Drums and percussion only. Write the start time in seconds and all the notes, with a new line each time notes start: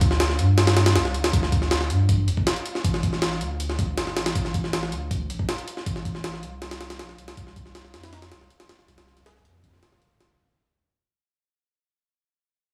0.01 kick, closed hi-hat
0.11 snare
0.20 snare, closed hi-hat
0.30 snare
0.39 closed hi-hat
0.58 snare, closed hi-hat
0.67 snare, closed hi-hat
0.77 snare, closed hi-hat
0.86 snare, closed hi-hat
0.96 snare, closed hi-hat
1.05 snare
1.14 closed hi-hat
1.24 snare, closed hi-hat
1.33 kick, closed hi-hat
1.43 snare
1.52 kick, closed hi-hat
1.62 snare
1.71 snare, closed hi-hat
1.81 snare
1.90 closed hi-hat
2.09 kick, closed hi-hat
2.28 closed hi-hat
2.37 kick
2.47 snare, closed hi-hat
2.56 closed hi-hat
2.66 closed hi-hat
2.75 snare
2.84 kick, closed hi-hat
2.94 snare
3.03 kick, closed hi-hat
3.13 snare
3.22 snare, closed hi-hat
3.32 snare
3.41 closed hi-hat
3.60 closed hi-hat
3.70 snare
3.79 kick, closed hi-hat
3.98 snare, closed hi-hat
4.07 snare
4.17 snare, closed hi-hat
4.26 snare, closed hi-hat
4.35 kick, closed hi-hat
4.45 snare
4.54 kick, closed hi-hat
4.64 snare
4.73 snare, closed hi-hat
4.83 snare
4.92 closed hi-hat
5.11 kick, closed hi-hat
5.30 closed hi-hat
5.39 kick
5.49 snare, closed hi-hat
5.58 closed hi-hat
5.68 closed hi-hat
5.77 snare
5.86 kick, closed hi-hat
5.96 snare
6.05 kick, closed hi-hat
6.15 snare
6.24 snare, closed hi-hat
6.34 snare
6.43 closed hi-hat
6.62 snare, closed hi-hat
6.71 snare, closed hi-hat
6.81 snare, closed hi-hat
6.90 snare, closed hi-hat
6.99 snare, closed hi-hat
7.09 snare
7.18 closed hi-hat
7.28 snare, closed hi-hat
7.37 kick, closed hi-hat
7.47 snare
7.56 kick, closed hi-hat
7.66 snare
7.75 snare, closed hi-hat
7.85 snare
7.94 snare, closed hi-hat
8.04 snare, closed hi-hat
8.13 snare, closed hi-hat
8.22 snare, closed hi-hat
8.32 snare, closed hi-hat
8.41 snare
8.50 closed hi-hat
8.60 snare, closed hi-hat
8.69 snare, closed hi-hat
8.79 snare
8.88 snare, closed hi-hat
8.98 snare, closed hi-hat
9.07 snare
9.17 snare, closed hi-hat
9.26 snare, closed hi-hat
9.36 snare
9.45 closed hi-hat
9.64 kick, closed hi-hat
9.73 snare
9.83 snare, closed hi-hat
9.92 snare
10.02 closed hi-hat
10.21 snare, closed hi-hat